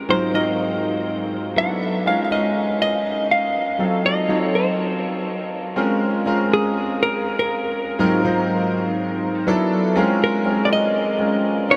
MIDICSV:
0, 0, Header, 1, 3, 480
1, 0, Start_track
1, 0, Key_signature, -5, "minor"
1, 0, Tempo, 493827
1, 87, Time_signature, 4, 2, 24, 8
1, 11438, End_track
2, 0, Start_track
2, 0, Title_t, "Hollow-body jazz guitar"
2, 0, Program_c, 0, 26
2, 0, Note_on_c, 0, 70, 90
2, 102, Note_on_c, 0, 72, 101
2, 122, Note_off_c, 0, 70, 0
2, 318, Note_off_c, 0, 72, 0
2, 340, Note_on_c, 0, 75, 94
2, 1256, Note_off_c, 0, 75, 0
2, 1538, Note_on_c, 0, 78, 101
2, 2013, Note_off_c, 0, 78, 0
2, 2016, Note_on_c, 0, 77, 102
2, 2171, Note_off_c, 0, 77, 0
2, 2182, Note_on_c, 0, 77, 66
2, 2250, Note_off_c, 0, 77, 0
2, 2256, Note_on_c, 0, 75, 95
2, 2728, Note_off_c, 0, 75, 0
2, 2739, Note_on_c, 0, 75, 104
2, 3217, Note_off_c, 0, 75, 0
2, 3221, Note_on_c, 0, 77, 84
2, 3941, Note_off_c, 0, 77, 0
2, 3945, Note_on_c, 0, 75, 97
2, 4425, Note_on_c, 0, 72, 75
2, 4432, Note_off_c, 0, 75, 0
2, 5579, Note_off_c, 0, 72, 0
2, 6352, Note_on_c, 0, 68, 96
2, 6826, Note_off_c, 0, 68, 0
2, 6830, Note_on_c, 0, 70, 108
2, 7156, Note_off_c, 0, 70, 0
2, 7186, Note_on_c, 0, 70, 98
2, 9179, Note_off_c, 0, 70, 0
2, 9950, Note_on_c, 0, 70, 81
2, 10354, Note_on_c, 0, 74, 79
2, 10364, Note_off_c, 0, 70, 0
2, 10415, Note_off_c, 0, 74, 0
2, 10426, Note_on_c, 0, 75, 110
2, 11338, Note_off_c, 0, 75, 0
2, 11384, Note_on_c, 0, 73, 101
2, 11438, Note_off_c, 0, 73, 0
2, 11438, End_track
3, 0, Start_track
3, 0, Title_t, "Grand piano"
3, 0, Program_c, 1, 0
3, 0, Control_c, 1, 64, 127
3, 0, Note_on_c, 1, 56, 90
3, 0, Note_on_c, 1, 60, 72
3, 0, Note_on_c, 1, 61, 77
3, 0, Note_on_c, 1, 65, 78
3, 0, Note_on_c, 1, 70, 95
3, 83, Note_on_c, 1, 44, 75
3, 83, Note_on_c, 1, 54, 73
3, 87, Note_off_c, 1, 60, 0
3, 87, Note_on_c, 1, 60, 69
3, 88, Note_on_c, 1, 63, 66
3, 90, Note_off_c, 1, 65, 0
3, 90, Note_on_c, 1, 65, 68
3, 94, Note_off_c, 1, 70, 0
3, 94, Note_on_c, 1, 70, 82
3, 99, Control_c, 1, 64, 0
3, 102, Note_off_c, 1, 61, 0
3, 109, Note_off_c, 1, 56, 0
3, 263, Control_c, 1, 64, 127
3, 299, Note_off_c, 1, 44, 0
3, 299, Note_off_c, 1, 54, 0
3, 301, Note_off_c, 1, 60, 0
3, 301, Note_off_c, 1, 63, 0
3, 302, Note_off_c, 1, 65, 0
3, 304, Note_off_c, 1, 70, 0
3, 326, Note_on_c, 1, 44, 69
3, 327, Note_on_c, 1, 54, 66
3, 331, Note_on_c, 1, 60, 69
3, 332, Note_on_c, 1, 63, 64
3, 332, Note_on_c, 1, 65, 70
3, 334, Note_on_c, 1, 70, 75
3, 1182, Note_off_c, 1, 44, 0
3, 1182, Note_off_c, 1, 54, 0
3, 1185, Note_off_c, 1, 60, 0
3, 1185, Note_off_c, 1, 63, 0
3, 1185, Note_off_c, 1, 65, 0
3, 1186, Note_off_c, 1, 70, 0
3, 1517, Note_on_c, 1, 54, 74
3, 1522, Note_on_c, 1, 59, 68
3, 1525, Note_on_c, 1, 62, 68
3, 1527, Note_on_c, 1, 64, 70
3, 1531, Note_on_c, 1, 69, 77
3, 1542, Control_c, 1, 64, 0
3, 1708, Control_c, 1, 64, 127
3, 1950, Note_off_c, 1, 54, 0
3, 1953, Note_off_c, 1, 59, 0
3, 1954, Note_off_c, 1, 62, 0
3, 1956, Note_off_c, 1, 64, 0
3, 1957, Note_off_c, 1, 69, 0
3, 1999, Note_on_c, 1, 56, 73
3, 2002, Note_on_c, 1, 61, 69
3, 2005, Note_on_c, 1, 63, 70
3, 2008, Note_on_c, 1, 65, 66
3, 2010, Note_on_c, 1, 70, 84
3, 2023, Control_c, 1, 64, 0
3, 2218, Note_off_c, 1, 56, 0
3, 2219, Note_off_c, 1, 61, 0
3, 2220, Control_c, 1, 64, 127
3, 2221, Note_off_c, 1, 63, 0
3, 2222, Note_off_c, 1, 65, 0
3, 2223, Note_off_c, 1, 70, 0
3, 2243, Note_on_c, 1, 56, 72
3, 2245, Note_on_c, 1, 61, 67
3, 2247, Note_on_c, 1, 63, 68
3, 2251, Note_on_c, 1, 65, 64
3, 2254, Note_on_c, 1, 70, 76
3, 3101, Note_off_c, 1, 56, 0
3, 3102, Note_off_c, 1, 61, 0
3, 3103, Note_off_c, 1, 63, 0
3, 3105, Note_off_c, 1, 65, 0
3, 3107, Note_off_c, 1, 70, 0
3, 3679, Note_on_c, 1, 54, 75
3, 3685, Note_on_c, 1, 60, 67
3, 3685, Note_on_c, 1, 63, 66
3, 3690, Note_on_c, 1, 65, 68
3, 3691, Note_on_c, 1, 69, 80
3, 3703, Control_c, 1, 64, 0
3, 3871, Control_c, 1, 64, 127
3, 4112, Note_off_c, 1, 54, 0
3, 4115, Note_off_c, 1, 60, 0
3, 4115, Note_off_c, 1, 63, 0
3, 4117, Note_off_c, 1, 65, 0
3, 4118, Note_off_c, 1, 69, 0
3, 4165, Note_on_c, 1, 54, 74
3, 4168, Note_on_c, 1, 60, 61
3, 4171, Note_on_c, 1, 63, 67
3, 4172, Note_on_c, 1, 65, 67
3, 4174, Note_on_c, 1, 69, 81
3, 5022, Note_off_c, 1, 54, 0
3, 5024, Note_off_c, 1, 60, 0
3, 5025, Note_off_c, 1, 63, 0
3, 5026, Note_off_c, 1, 65, 0
3, 5027, Note_off_c, 1, 69, 0
3, 5599, Note_on_c, 1, 56, 88
3, 5601, Note_on_c, 1, 60, 86
3, 5606, Note_on_c, 1, 61, 83
3, 5608, Note_on_c, 1, 65, 84
3, 5613, Note_on_c, 1, 70, 93
3, 5623, Control_c, 1, 64, 0
3, 5780, Control_c, 1, 64, 127
3, 6032, Note_off_c, 1, 56, 0
3, 6033, Note_off_c, 1, 60, 0
3, 6036, Note_off_c, 1, 61, 0
3, 6037, Note_off_c, 1, 65, 0
3, 6039, Note_off_c, 1, 70, 0
3, 6084, Note_on_c, 1, 56, 88
3, 6085, Note_on_c, 1, 60, 78
3, 6090, Note_on_c, 1, 61, 81
3, 6093, Note_on_c, 1, 65, 80
3, 6096, Note_on_c, 1, 70, 100
3, 6941, Note_off_c, 1, 56, 0
3, 6942, Note_off_c, 1, 60, 0
3, 6945, Note_off_c, 1, 61, 0
3, 6946, Note_off_c, 1, 65, 0
3, 6948, Note_off_c, 1, 70, 0
3, 7766, Note_on_c, 1, 44, 98
3, 7766, Note_on_c, 1, 54, 91
3, 7768, Note_on_c, 1, 60, 87
3, 7774, Note_on_c, 1, 65, 84
3, 7775, Note_on_c, 1, 63, 86
3, 7776, Note_on_c, 1, 70, 103
3, 7783, Control_c, 1, 64, 0
3, 7967, Control_c, 1, 64, 127
3, 7982, Note_off_c, 1, 44, 0
3, 7982, Note_off_c, 1, 54, 0
3, 7983, Note_off_c, 1, 60, 0
3, 7986, Note_off_c, 1, 63, 0
3, 7986, Note_off_c, 1, 65, 0
3, 7987, Note_off_c, 1, 70, 0
3, 8007, Note_on_c, 1, 44, 90
3, 8011, Note_on_c, 1, 54, 76
3, 8011, Note_on_c, 1, 60, 79
3, 8015, Note_on_c, 1, 63, 79
3, 8016, Note_on_c, 1, 65, 80
3, 8018, Note_on_c, 1, 72, 90
3, 8863, Note_off_c, 1, 44, 0
3, 8864, Note_off_c, 1, 60, 0
3, 8865, Note_off_c, 1, 54, 0
3, 8867, Note_off_c, 1, 63, 0
3, 8867, Note_off_c, 1, 65, 0
3, 8868, Note_off_c, 1, 72, 0
3, 9201, Note_on_c, 1, 54, 88
3, 9204, Note_on_c, 1, 59, 88
3, 9207, Note_on_c, 1, 62, 83
3, 9212, Note_on_c, 1, 64, 85
3, 9213, Note_on_c, 1, 69, 107
3, 9223, Control_c, 1, 64, 0
3, 9390, Control_c, 1, 64, 127
3, 9633, Note_off_c, 1, 54, 0
3, 9634, Note_off_c, 1, 59, 0
3, 9636, Note_off_c, 1, 62, 0
3, 9638, Note_off_c, 1, 64, 0
3, 9638, Note_off_c, 1, 69, 0
3, 9677, Note_on_c, 1, 56, 99
3, 9680, Note_on_c, 1, 60, 88
3, 9684, Note_on_c, 1, 61, 87
3, 9687, Note_on_c, 1, 65, 88
3, 9689, Note_on_c, 1, 70, 98
3, 9703, Control_c, 1, 64, 0
3, 9853, Control_c, 1, 64, 127
3, 10110, Note_off_c, 1, 56, 0
3, 10112, Note_off_c, 1, 60, 0
3, 10114, Note_off_c, 1, 61, 0
3, 10116, Note_off_c, 1, 65, 0
3, 10116, Note_off_c, 1, 70, 0
3, 10158, Note_on_c, 1, 56, 69
3, 10163, Note_on_c, 1, 60, 68
3, 10163, Note_on_c, 1, 61, 68
3, 10168, Note_on_c, 1, 65, 69
3, 10169, Note_on_c, 1, 70, 80
3, 10804, Note_off_c, 1, 56, 0
3, 10807, Note_off_c, 1, 60, 0
3, 10807, Note_off_c, 1, 61, 0
3, 10810, Note_off_c, 1, 65, 0
3, 10810, Note_off_c, 1, 70, 0
3, 10877, Note_on_c, 1, 56, 63
3, 10881, Note_on_c, 1, 60, 59
3, 10882, Note_on_c, 1, 61, 57
3, 10887, Note_on_c, 1, 65, 58
3, 10888, Note_on_c, 1, 70, 72
3, 11346, Note_off_c, 1, 56, 0
3, 11348, Note_off_c, 1, 61, 0
3, 11355, Note_off_c, 1, 65, 0
3, 11361, Note_on_c, 1, 56, 71
3, 11363, Note_on_c, 1, 61, 71
3, 11365, Note_off_c, 1, 60, 0
3, 11367, Note_on_c, 1, 63, 71
3, 11368, Note_off_c, 1, 70, 0
3, 11370, Note_on_c, 1, 65, 74
3, 11374, Note_on_c, 1, 71, 82
3, 11379, Control_c, 1, 64, 0
3, 11438, Note_off_c, 1, 56, 0
3, 11438, Note_off_c, 1, 61, 0
3, 11438, Note_off_c, 1, 63, 0
3, 11438, Note_off_c, 1, 65, 0
3, 11438, Note_off_c, 1, 71, 0
3, 11438, End_track
0, 0, End_of_file